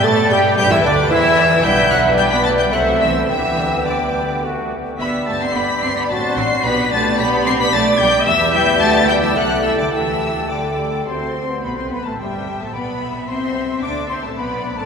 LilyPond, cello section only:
\new Staff \with { instrumentName = "Cello section" } { \time 3/4 \key g \major \tempo 4 = 110 a8 g8 g16 e16 d8 e4 | g8 fis8 g16 b16 a16 g16 fis8 e8 | e4 d4 r4 | b8 a16 c'16 b8 c'16 b16 a8 c'8 |
b8 a8 b8 c'16 b16 a8 g8 | e8 g8 a8 g16 e16 fis8 e16 d16 | e4 d4 c'4 | b16 c'16 b16 a16 g8. a16 b4 |
c'4 d'8 c'16 a16 b8. a16 | }